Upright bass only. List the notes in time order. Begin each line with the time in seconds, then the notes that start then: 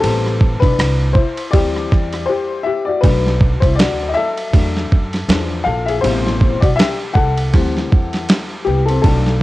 0.04 A1
0.62 B1
0.79 C2
1.54 D2
1.92 E2
3.04 B1
3.62 C2
3.79 D2
4.54 E2
4.92 F#2
5.29 E2
5.66 A#1
6.04 A1
6.62 B1
7.15 C2
7.54 D2
7.92 E2
8.67 C2
9.04 B1